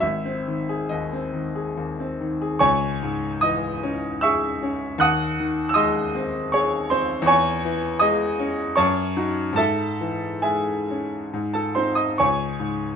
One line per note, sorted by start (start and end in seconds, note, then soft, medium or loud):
0.00 2.55 G#1 medium
0.00 0.88 E5 medium
0.25 0.59 C4 soft
0.47 0.81 D#3 soft
0.69 1.03 G#4 soft
0.89 1.25 D#2 soft
0.89 1.74 D#5 medium
1.13 1.46 C4 soft
1.33 1.66 D#3 soft
1.56 1.88 G#4 soft
1.77 2.10 D#2 soft
2.00 2.32 C4 soft
2.21 2.53 D#3 soft
2.42 2.61 G#4 soft
2.59 4.96 C#2 medium
2.59 3.38 C#5 medium
2.59 3.38 G#5 medium
2.59 3.41 C#6 loud
3.03 3.66 G#2 soft
3.41 4.06 E3 soft
3.41 4.17 D#5 medium
3.41 4.20 D#6 medium
3.83 4.45 C#4 medium
4.21 4.85 G#4 medium
4.21 4.96 E5 medium
4.21 4.96 C#6 medium
4.21 4.99 E6 loud
4.63 5.00 C#4 medium
4.98 7.24 D#2 medium
4.98 5.66 F#5 medium
4.98 5.66 D#6 medium
4.98 5.69 F#6 loud
5.40 6.00 D#3 soft
5.69 5.76 E6 medium
5.74 6.37 G#3 soft
5.74 6.48 D#5 medium
5.74 6.48 C6 medium
5.74 6.52 D#6 loud
6.15 6.76 C4 medium
6.52 7.14 G#4 medium
6.52 6.89 C#5 medium
6.52 6.91 C#6 loud
6.90 7.29 C4 medium
6.90 7.26 C5 medium
6.90 7.28 C6 loud
7.22 8.70 E2 medium
7.26 7.97 C#5 medium
7.26 7.97 G#5 loud
7.26 8.01 C#6 loud
7.65 8.24 E3 medium
7.99 8.62 G#3 medium
7.99 8.73 D#5 medium
7.99 8.76 D#6 loud
8.40 8.77 C#4 medium
8.76 9.56 F#2 medium
8.76 9.54 C#5 medium
8.76 9.54 A5 medium
8.76 9.58 C#6 loud
9.17 9.54 D#4 medium
9.17 9.55 F#4 medium
9.53 11.26 G#2 medium
9.53 10.42 A5 loud
9.57 10.39 A4 medium
9.57 10.39 E5 medium
10.01 10.71 E3 soft
10.42 11.16 G#3 soft
10.42 11.50 G#4 soft
10.42 11.51 E5 medium
10.42 11.54 G#5 medium
10.91 11.34 C#4 soft
11.34 12.17 G#2 medium
11.54 11.75 A4 medium
11.54 11.76 A5 medium
11.75 12.15 C4 soft
11.75 12.15 D#4 soft
11.75 11.96 C5 medium
11.75 11.97 C6 medium
11.95 12.17 D#5 medium
11.95 12.18 D#6 medium
12.18 12.96 C#2 medium
12.18 12.96 C#5 medium
12.18 12.96 G#5 medium
12.18 12.96 C#6 loud
12.60 12.96 G#2 soft